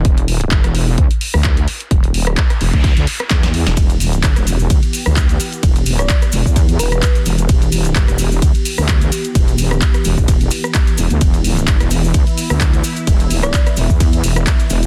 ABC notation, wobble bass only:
X:1
M:4/4
L:1/16
Q:"Swing 16ths" 1/4=129
K:Em
V:1 name="Wobble bass" clef=bass
E,,,4 G,,, E,,,3 D,, z2 D,,3 z2 | E,,,4 z2 E,,, D,,2 D,, z2 E,,3 E,,, | E,,,4 G,,, E,,,3 D,, z2 D,,3 z2 | E,,,4 z2 E,,, E,,3 E,,,2 z2 E,,,2 |
E,,,4 G,,, E,,,3 D,, z2 D,,3 z2 | E,,,4 z2 E,,, E,,,3 z4 E,,, D,, | E,,,4 G,,, E,,,3 D,, z2 D,,3 z2 | E,,,4 z2 E,,, E,,3 E,,,2 z2 E,,,2 |]